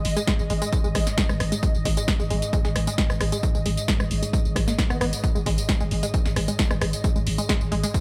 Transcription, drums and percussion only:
0.05 open hi-hat
0.17 closed hi-hat, tambourine
0.27 kick, snare, closed hi-hat, tambourine
0.39 tambourine
0.50 open hi-hat
0.62 closed hi-hat, tambourine
0.73 kick, closed hi-hat, tambourine
0.84 tambourine
0.95 kick, cross-stick, open hi-hat
1.07 snare, closed hi-hat, tambourine
1.18 kick, snare, closed hi-hat, tambourine
1.29 cross-stick, tambourine
1.40 cross-stick, open hi-hat
1.52 closed hi-hat, tambourine
1.63 kick, closed hi-hat, tambourine
1.75 tambourine
1.85 kick, open hi-hat
1.97 closed hi-hat, tambourine
2.08 kick, snare, closed hi-hat, tambourine
2.20 tambourine
2.30 open hi-hat
2.42 closed hi-hat, tambourine
2.53 kick, closed hi-hat, tambourine
2.65 snare, tambourine
2.76 cross-stick, open hi-hat
2.87 closed hi-hat, tambourine
2.98 kick, snare, closed hi-hat, tambourine
3.10 cross-stick, tambourine
3.21 cross-stick, open hi-hat
3.32 closed hi-hat, tambourine
3.43 kick, closed hi-hat, tambourine
3.55 tambourine
3.66 open hi-hat
3.77 closed hi-hat, tambourine
3.88 kick, snare, closed hi-hat, tambourine
4.00 cross-stick, tambourine
4.11 open hi-hat
4.23 closed hi-hat, tambourine
4.33 kick, closed hi-hat, tambourine
4.45 tambourine
4.56 kick, cross-stick, open hi-hat
4.68 snare, closed hi-hat, tambourine
4.78 kick, snare, closed hi-hat, tambourine
4.90 cross-stick, tambourine
5.01 cross-stick, open hi-hat
5.13 closed hi-hat, tambourine
5.24 kick, closed hi-hat, tambourine
5.35 tambourine
5.46 kick, open hi-hat
5.58 closed hi-hat, tambourine
5.69 kick, snare, closed hi-hat, tambourine
5.80 tambourine
5.91 open hi-hat
6.03 closed hi-hat, tambourine
6.14 kick, closed hi-hat, tambourine
6.26 snare, tambourine
6.36 cross-stick, open hi-hat
6.48 closed hi-hat, tambourine
6.59 kick, snare, closed hi-hat, tambourine
6.71 cross-stick, tambourine
6.81 cross-stick, open hi-hat
6.93 closed hi-hat, tambourine
7.04 kick, closed hi-hat, tambourine
7.16 tambourine
7.27 open hi-hat
7.38 closed hi-hat, tambourine
7.49 kick, snare, closed hi-hat, tambourine
7.61 tambourine
7.72 open hi-hat
7.83 closed hi-hat, tambourine
7.94 kick, closed hi-hat, tambourine

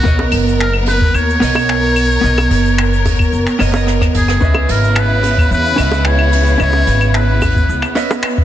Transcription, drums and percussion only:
0.06 kick, shaker
0.19 high bongo
0.32 open hi-hat, claves, shaker
0.48 shaker
0.61 finger snap, shaker
0.74 claves
0.86 open hi-hat, high bongo, shaker
1.01 kick, shaker
1.14 claves, shaker
1.30 shaker
1.42 open hi-hat, shaker
1.55 high bongo, claves, shaker
1.69 finger snap, shaker
1.96 open hi-hat, claves, shaker
2.11 shaker
2.25 shaker
2.38 high bongo, claves, shaker
2.51 open hi-hat, shaker
2.65 shaker
2.78 finger snap, claves, shaker
2.93 shaker
3.05 kick, open hi-hat, high bongo, shaker
3.19 kick, claves, shaker
3.33 shaker
3.47 finger snap, shaker
3.60 open hi-hat, claves, shaker
3.74 high bongo, shaker
3.87 cross-stick, shaker
4.01 kick, cross-stick, claves
4.14 kick, open hi-hat, shaker
4.28 cross-stick, shaker
4.42 kick, shaker
4.54 high bongo, claves
4.69 open hi-hat, shaker
4.84 shaker
4.96 finger snap, claves, shaker
5.23 open hi-hat, high bongo, shaker
5.38 kick, claves, shaker
5.52 shaker
5.65 shaker
5.78 open hi-hat, claves, shaker
5.91 high bongo, shaker
6.05 finger snap, shaker
6.19 claves
6.33 open hi-hat, shaker
6.47 shaker
6.60 claves, shaker
6.73 high bongo
6.87 open hi-hat, shaker
7.01 claves, shaker
7.14 finger snap, shaker
7.42 kick, open hi-hat, high bongo, claves, shaker
7.56 kick, shaker
7.69 shaker
7.82 finger snap, claves, shaker
7.95 open hi-hat, shaker
8.10 high bongo, shaker
8.23 finger snap, claves, shaker
8.38 kick

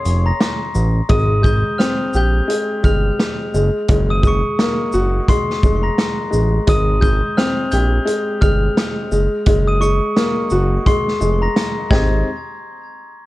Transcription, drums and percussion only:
0.05 closed hi-hat, shaker
0.40 cross-stick, snare, closed hi-hat
0.75 shaker
1.09 kick, closed hi-hat
1.44 kick, shaker
1.80 cross-stick, snare, closed hi-hat
2.13 shaker
2.49 closed hi-hat
2.84 kick, shaker
3.19 cross-stick, snare, closed hi-hat
3.54 shaker
3.88 kick, closed hi-hat
4.23 kick, shaker
4.59 cross-stick, snare, closed hi-hat
4.92 shaker
5.28 kick, closed hi-hat
5.50 snare
5.63 kick, shaker
5.98 cross-stick, snare, closed hi-hat
6.33 shaker
6.67 kick, closed hi-hat
7.02 kick, shaker
7.38 cross-stick, snare, closed hi-hat
7.71 closed hi-hat, shaker
8.07 closed hi-hat
8.42 kick, shaker
8.77 cross-stick, snare, closed hi-hat
9.12 shaker
9.46 kick, closed hi-hat
9.82 shaker
10.17 cross-stick, snare, closed hi-hat
10.50 shaker
10.86 kick, closed hi-hat
11.08 snare
11.21 shaker
11.56 cross-stick, snare, closed hi-hat
11.91 kick, snare

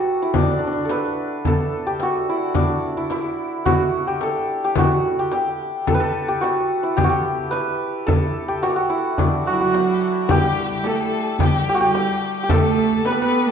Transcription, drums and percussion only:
0.07 tombak ka
0.34 frame drum, tombak dum
0.76 tombak ka
0.89 tombak tek, frame drum
1.17 tombak ka
1.45 tombak dum, frame drum
1.72 tombak ka
2.00 tombak tek, frame drum
2.28 tombak ka
2.54 frame drum, tombak dum
3.10 tombak tek, frame drum
3.26 tombak ka
3.66 tombak dum, frame drum
3.93 tombak ka
4.21 tombak tek, frame drum
4.49 tombak ka
4.75 frame drum, tombak dum
5.31 tombak tek, frame drum
5.46 tombak ka
5.87 frame drum, tombak dum
6.16 tombak ka
6.42 tombak tek, frame drum
6.70 tombak ka
6.98 frame drum, tombak dum
7.52 tombak tek, frame drum
7.67 tombak ka
8.08 frame drum, tombak dum
8.50 tombak ka
8.63 tombak tek, frame drum
9.18 tombak dum, frame drum
9.32 tombak ka
9.46 tombak ka
9.74 tombak tek, frame drum
9.88 tombak ka
10.02 tombak ka
10.29 frame drum, tombak dum
10.57 tombak ka
10.84 tombak tek, frame drum
11.39 tombak dum, frame drum
11.82 tombak ka
11.95 tombak tek, frame drum
12.49 tombak dum, frame drum
12.77 tombak ka
13.05 tombak tek, frame drum

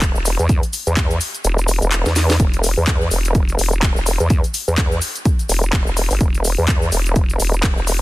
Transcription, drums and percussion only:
0.02 kick, clap, closed hi-hat, shaker
0.16 shaker
0.26 open hi-hat, shaker
0.39 closed hi-hat, shaker
0.49 kick, closed hi-hat, shaker
0.63 closed hi-hat, shaker
0.73 open hi-hat, shaker
0.87 closed hi-hat, shaker
0.97 kick, clap, closed hi-hat, shaker
1.11 closed hi-hat, shaker
1.21 open hi-hat, shaker
1.35 closed hi-hat, shaker
1.45 closed hi-hat, shaker
1.58 closed hi-hat, shaker
1.68 open hi-hat, shaker
1.82 closed hi-hat, shaker
1.92 clap, closed hi-hat, shaker
2.06 snare, shaker
2.16 snare, open hi-hat, shaker
2.30 snare, open hi-hat, shaker
2.40 kick, closed hi-hat, shaker
2.54 closed hi-hat, shaker
2.64 open hi-hat, shaker
2.77 shaker
2.87 kick, clap, closed hi-hat, shaker
3.01 shaker
3.11 open hi-hat, shaker
3.25 closed hi-hat, shaker
3.35 kick, closed hi-hat, shaker
3.49 closed hi-hat, shaker
3.59 open hi-hat, shaker
3.73 closed hi-hat, shaker
3.83 kick, clap, closed hi-hat, shaker
3.96 shaker
4.06 open hi-hat, shaker
4.20 closed hi-hat, shaker
4.30 kick, closed hi-hat, shaker
4.44 closed hi-hat, shaker
4.54 open hi-hat, shaker
4.68 shaker
4.78 kick, clap, closed hi-hat, shaker
4.92 shaker
5.02 open hi-hat, shaker
5.16 closed hi-hat, shaker
5.25 kick, closed hi-hat, shaker
5.39 closed hi-hat, shaker
5.49 open hi-hat, shaker
5.63 closed hi-hat, shaker
5.73 kick, clap, closed hi-hat, shaker
5.87 shaker
5.97 open hi-hat, shaker
6.11 open hi-hat, shaker
6.21 kick, closed hi-hat, shaker
6.35 closed hi-hat, shaker
6.45 open hi-hat, shaker
6.58 shaker
6.68 kick, clap, closed hi-hat, shaker
6.82 shaker
6.92 open hi-hat, shaker
7.06 closed hi-hat, shaker
7.16 kick, closed hi-hat, shaker
7.30 closed hi-hat, shaker
7.40 open hi-hat, shaker
7.54 closed hi-hat, shaker
7.64 kick, clap, closed hi-hat, shaker
7.77 shaker
7.87 open hi-hat, shaker

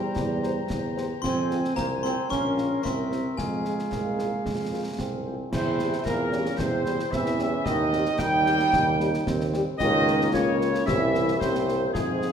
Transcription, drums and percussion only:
0.16 concert bass drum, snare
0.44 snare
0.70 concert bass drum, snare
0.98 snare
1.24 concert bass drum, snare, crash
1.51 snare
1.64 snare
1.77 concert bass drum, snare
2.05 snare
2.31 concert bass drum, snare
2.58 snare
2.85 concert bass drum, snare
3.12 snare
3.38 concert bass drum, snare
3.65 snare
3.79 snare
3.92 concert bass drum, snare
4.19 snare
4.46 concert bass drum, snare
4.99 concert bass drum, snare
5.53 concert bass drum, snare, crash
5.79 snare
5.93 snare
6.06 concert bass drum, snare
6.32 snare
6.46 snare
6.59 concert bass drum, snare
6.86 snare
6.99 snare
7.13 concert bass drum, snare
7.26 snare
7.39 snare
7.66 concert bass drum, snare
7.93 snare
8.06 snare
8.19 concert bass drum, snare
8.46 snare
8.59 snare
8.73 concert bass drum, snare
9.00 snare
9.14 snare
9.27 concert bass drum, snare
9.41 snare
9.54 snare
9.80 concert bass drum, snare, crash
10.08 snare
10.21 snare
10.34 concert bass drum, snare
10.61 snare
10.75 snare
10.88 concert bass drum, snare
11.15 snare
11.28 snare
11.41 concert bass drum, snare
11.55 snare
11.68 snare
11.95 concert bass drum, snare
12.22 snare

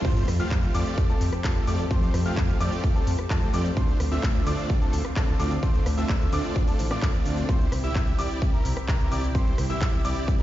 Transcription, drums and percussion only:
0.05 kick, closed hi-hat, crash, shaker
0.16 closed hi-hat, shaker
0.28 cross-stick, open hi-hat, shaker
0.40 closed hi-hat, shaker
0.51 kick, clap, closed hi-hat, shaker
0.63 closed hi-hat, shaker
0.74 open hi-hat, shaker
0.86 closed hi-hat, shaker
0.98 kick, closed hi-hat, shaker
1.09 closed hi-hat, shaker
1.21 open hi-hat, shaker
1.33 cross-stick, closed hi-hat, shaker
1.44 kick, clap, closed hi-hat, shaker
1.56 closed hi-hat, shaker
1.67 open hi-hat, shaker
1.79 closed hi-hat, shaker
1.91 kick, closed hi-hat, shaker
2.02 closed hi-hat, shaker
2.14 cross-stick, open hi-hat, shaker
2.26 closed hi-hat, shaker
2.37 kick, clap, closed hi-hat, shaker
2.49 closed hi-hat, shaker
2.60 open hi-hat, shaker
2.72 closed hi-hat, shaker
2.84 kick, closed hi-hat, shaker
2.95 closed hi-hat, shaker
3.07 open hi-hat, shaker
3.19 cross-stick, closed hi-hat, shaker
3.30 kick, clap, closed hi-hat, shaker
3.42 closed hi-hat, shaker
3.54 open hi-hat, shaker
3.65 closed hi-hat, shaker
3.77 kick, closed hi-hat, shaker
3.88 closed hi-hat, shaker
4.00 cross-stick, open hi-hat, shaker
4.12 closed hi-hat, shaker
4.23 kick, clap, closed hi-hat, shaker
4.35 closed hi-hat, shaker
4.47 open hi-hat, shaker
4.58 closed hi-hat, shaker
4.70 kick, closed hi-hat, shaker
4.81 closed hi-hat, shaker
4.93 open hi-hat, shaker
5.05 cross-stick, closed hi-hat, shaker
5.16 kick, clap, closed hi-hat, shaker
5.28 closed hi-hat, shaker
5.40 open hi-hat, shaker
5.51 closed hi-hat, shaker
5.63 kick, closed hi-hat, shaker
5.74 closed hi-hat, shaker
5.86 cross-stick, open hi-hat, shaker
5.98 closed hi-hat, shaker
6.09 kick, clap, closed hi-hat, shaker
6.21 closed hi-hat, shaker
6.33 open hi-hat, shaker
6.44 closed hi-hat, shaker
6.56 kick, closed hi-hat, shaker
6.68 open hi-hat, shaker
6.79 open hi-hat, shaker
6.91 cross-stick, closed hi-hat, shaker
7.02 kick, clap, closed hi-hat, shaker
7.14 closed hi-hat, shaker
7.26 open hi-hat, shaker
7.37 closed hi-hat, shaker
7.49 kick, closed hi-hat, shaker
7.60 closed hi-hat, shaker
7.72 cross-stick, open hi-hat, shaker
7.84 closed hi-hat, shaker
7.95 kick, clap, closed hi-hat, shaker
8.07 closed hi-hat, shaker
8.19 open hi-hat, shaker
8.30 closed hi-hat, shaker
8.42 kick, closed hi-hat, shaker
8.54 closed hi-hat, shaker
8.65 open hi-hat, shaker
8.77 cross-stick, closed hi-hat, shaker
8.88 kick, clap, shaker
9.00 closed hi-hat, shaker
9.12 open hi-hat, shaker
9.23 closed hi-hat, shaker
9.35 kick, closed hi-hat, shaker
9.47 closed hi-hat, shaker
9.58 cross-stick, open hi-hat, shaker
9.70 closed hi-hat, shaker
9.81 kick, clap, closed hi-hat, shaker
9.93 closed hi-hat, shaker
10.05 open hi-hat, shaker
10.16 closed hi-hat, shaker
10.28 kick, closed hi-hat, shaker
10.40 closed hi-hat

